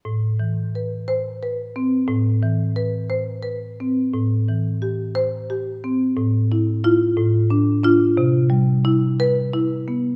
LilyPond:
\new Staff \with { instrumentName = "Marimba" } { \time 6/8 \key a \minor \tempo 4. = 59 << { r4. c''4 r8 | r2. | r4. c''4 r8 | r4 f'8 r4 f'8 |
r4. b'4 r8 | } \\ { a,8 e8 b'4 b'8 c'8 | a,8 e8 b'8 c''8 b'8 c'8 | a,8 e8 g'4 g'8 c'8 | a,8 e'8 e'8 a,8 d'8 d'8 |
c8 g8 e'4 e'8 b8 | } >> }